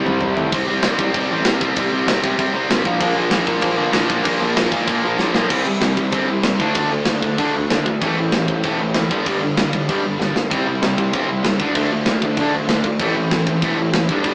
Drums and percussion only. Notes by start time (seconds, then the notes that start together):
0.06 mid tom
0.21 floor tom
0.37 floor tom
0.52 kick, crash
0.83 snare, crash
0.99 kick
1.14 kick, crash
1.45 snare, crash
1.61 kick
1.76 kick, crash
2.08 snare, crash
2.24 kick
2.39 kick, crash
2.71 snare, crash
2.85 kick
3.01 kick, crash
3.31 snare, crash
3.47 kick
3.61 kick, crash
3.93 snare, crash
4.10 kick
4.25 kick, crash
4.57 snare, crash
4.72 kick
4.88 kick, crash
5.19 snare
5.34 snare
5.50 kick, crash
5.81 snare, crash
5.97 kick
6.12 kick, crash
6.43 snare, crash
6.60 kick
6.75 kick, crash
7.05 snare, crash
7.22 kick
7.38 kick, crash
7.70 snare, crash
7.86 kick
8.02 kick, crash
8.32 snare, crash
8.48 kick
8.63 kick, crash
8.94 snare, crash
9.11 kick
9.26 kick, crash
9.57 snare, crash
9.73 kick
9.89 kick, crash
10.21 snare
10.36 snare
10.51 kick, crash
10.83 snare, crash
10.98 kick
11.13 kick, crash
11.44 snare, crash
11.60 kick
11.75 kick, crash
12.06 snare, crash
12.22 kick
12.37 kick, crash
12.69 snare, crash
12.84 kick
12.99 kick, crash
13.31 snare, crash
13.47 kick
13.62 kick, crash
13.93 snare, crash
14.09 kick
14.24 kick, crash